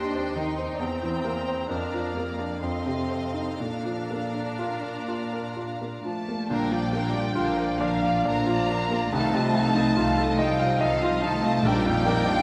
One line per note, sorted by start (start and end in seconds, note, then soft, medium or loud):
0.00 0.77 D#2 medium
0.00 0.36 D#3 soft
0.00 0.15 C4 soft
0.00 0.35 D4 medium
0.00 0.83 D#4 soft
0.00 0.83 G4 medium
0.00 0.83 C5 soft
0.00 0.77 D#5 soft
0.00 0.77 G5 soft
0.00 0.76 C6 medium
0.15 0.50 C4 soft
0.35 0.72 D#3 soft
0.35 0.80 D#4 medium
0.58 0.81 C4 soft
0.74 0.81 D5 soft
0.79 1.67 E2 soft
0.79 1.68 E2 soft
0.79 1.69 C4 medium
0.79 1.70 C5 medium
0.79 1.65 G5 soft
0.79 2.57 A#5 soft
1.03 1.39 E3 soft
1.25 1.61 A#3 soft
1.48 1.70 C4 soft
1.69 2.58 F2 soft
1.69 3.58 F2 soft
1.69 2.15 D4 soft
1.69 2.62 A#4 medium
1.69 2.57 D5 soft
1.69 6.27 F5 soft
1.94 2.30 F3 soft
2.14 2.61 A#3 soft
2.14 2.53 A#3 soft
2.39 2.62 D4 soft
2.61 3.56 F2 soft
2.61 3.58 C4 soft
2.61 3.57 A4 medium
2.61 3.55 D#5 soft
2.61 3.54 C6 soft
2.86 3.24 C3 soft
3.10 3.49 C4 soft
3.34 3.59 D#4 soft
3.57 6.05 A#2 soft
3.57 6.48 A#2 soft
3.57 6.05 D4 soft
3.57 4.61 A4 medium
3.57 6.27 D5 soft
3.57 6.01 A#5 soft
3.85 4.25 F3 soft
4.11 4.50 A#3 soft
4.34 4.74 D4 soft
4.59 4.98 F4 soft
4.59 5.57 A#4 soft
4.83 5.22 A#4 soft
5.08 5.47 F4 soft
5.33 5.71 A#4 soft
5.56 5.96 F4 soft
5.81 6.20 A#3 soft
6.05 6.42 F3 soft
6.05 6.48 A3 soft
6.05 6.48 A5 soft
6.28 6.51 A#3 soft
6.50 7.25 A#1 medium
6.50 9.08 A#2 soft
6.50 6.70 D3 soft
6.50 11.60 F3 soft
6.50 7.80 G3 soft
6.50 6.70 D4 soft
6.50 9.09 D4 soft
6.50 6.71 A#4 soft
6.50 6.71 F5 soft
6.50 7.80 G5 medium
6.71 6.92 F3 soft
6.71 7.05 F3 soft
6.71 6.93 A#3 soft
6.71 6.93 F4 soft
6.71 6.93 D5 soft
6.92 7.14 D3 soft
6.92 7.26 A#3 soft
6.92 7.14 D4 soft
6.92 7.14 A#4 soft
6.92 7.14 F5 soft
7.12 7.34 F3 soft
7.12 7.34 A#3 soft
7.12 7.48 D4 soft
7.12 7.35 F4 soft
7.12 7.35 D5 soft
7.34 8.15 A#1 medium
7.34 7.55 D3 soft
7.34 7.55 D4 soft
7.34 7.70 F4 soft
7.34 7.56 A#4 soft
7.34 7.56 F5 soft
7.56 7.79 F3 soft
7.56 7.79 A#3 soft
7.56 7.81 F4 soft
7.56 7.94 A#4 soft
7.56 7.81 D5 soft
7.78 8.02 D3 soft
7.78 8.25 F3 medium
7.78 8.02 D4 soft
7.78 8.04 A#4 soft
7.78 8.17 D5 medium
7.78 8.25 F5 medium
7.82 8.04 F5 soft
8.02 8.25 F3 soft
8.02 8.25 A#3 soft
8.02 8.39 F5 soft
8.06 8.27 F4 soft
8.06 8.27 D5 soft
8.25 9.02 A#1 medium
8.25 8.46 D3 soft
8.25 9.12 A#3 medium
8.25 8.46 D4 soft
8.25 8.61 D5 soft
8.25 8.48 F5 soft
8.25 9.11 A#5 medium
8.29 8.48 A#4 soft
8.46 8.69 F3 soft
8.46 8.69 A#3 soft
8.46 8.82 F4 soft
8.51 8.72 F4 soft
8.51 8.71 D5 soft
8.68 8.90 D3 soft
8.68 9.03 D4 soft
8.68 8.90 D4 soft
8.72 8.93 A#4 soft
8.72 8.92 F5 soft
8.89 9.11 F3 soft
8.89 9.11 A#3 soft
8.89 9.12 A#3 soft
8.94 9.14 F4 soft
8.94 9.14 D5 soft
9.09 9.87 C2 medium
9.09 11.60 C2 medium
9.09 9.31 D#3 medium
9.09 10.36 A3 medium
9.09 9.30 D#4 soft
9.09 10.37 A5 medium
9.14 12.42 D#4 soft
9.14 9.34 A4 soft
9.14 9.33 F5 soft
9.32 9.67 C3 soft
9.32 9.54 F3 soft
9.32 9.54 C4 soft
9.32 9.55 F4 soft
9.32 9.55 D#5 soft
9.52 9.75 D#3 soft
9.52 9.88 A3 medium
9.52 9.74 D#4 soft
9.56 9.77 A4 soft
9.56 9.77 F5 soft
9.74 9.96 F3 soft
9.74 9.96 C4 soft
9.74 10.09 D#4 soft
9.74 9.97 F4 soft
9.74 9.98 D#5 soft
9.95 10.71 C2 medium
9.95 10.16 D#3 soft
9.95 10.16 D#4 soft
9.95 10.30 F4 soft
9.95 10.18 A4 soft
10.00 10.18 F5 soft
10.17 10.38 F3 soft
10.17 10.38 C4 soft
10.17 10.40 F4 soft
10.17 10.51 A4 soft
10.17 10.40 D#5 soft
10.36 10.59 D#3 soft
10.36 10.81 G3 medium
10.36 10.59 D#4 soft
10.36 10.60 A4 soft
10.36 10.72 D#5 medium
10.36 10.60 F5 soft
10.36 10.80 G5 medium
10.57 10.79 F3 soft
10.57 10.79 C4 soft
10.57 10.81 F4 soft
10.57 10.81 D#5 soft
10.57 10.93 F5 medium
10.79 11.54 C2 medium
10.79 10.99 D#3 medium
10.79 11.22 F3 medium
10.79 10.99 D#4 medium
10.79 11.00 A4 medium
10.79 11.14 D#5 medium
10.79 11.00 F5 soft
10.79 11.22 F5 medium
11.00 11.22 F3 soft
11.00 11.22 C4 soft
11.00 11.35 F4 soft
11.00 11.23 F4 soft
11.00 11.23 D#5 soft
11.22 11.43 D#3 soft
11.22 11.62 A3 medium
11.22 11.55 D#4 soft
11.22 11.43 D#4 soft
11.22 11.43 A4 soft
11.22 11.43 F5 soft
11.22 11.64 A5 medium
11.42 11.62 F3 soft
11.42 11.64 A3 medium
11.42 11.63 C4 soft
11.42 11.64 F4 medium
11.42 11.64 D#5 soft
11.63 12.36 A#1 medium
11.63 12.42 A#1 medium
11.63 12.42 A#2 medium
11.63 11.82 F3 medium
11.63 12.42 F3 medium
11.63 12.42 G3 medium
11.63 11.83 D4 medium
11.63 11.83 A#4 medium
11.63 11.83 D5 medium
11.63 12.42 G5 medium
11.84 12.18 F2 medium
11.84 12.05 A#3 soft
11.84 12.05 F4 medium
11.84 12.05 F4 soft
11.84 12.05 F5 soft
12.05 12.26 F3 soft
12.05 12.39 A#3 medium
12.05 12.25 D4 soft
12.05 12.25 A#4 medium
12.05 12.25 D5 soft
12.26 12.42 A#3 soft
12.26 12.42 D4 medium
12.26 12.42 F4 soft
12.26 12.42 F5 medium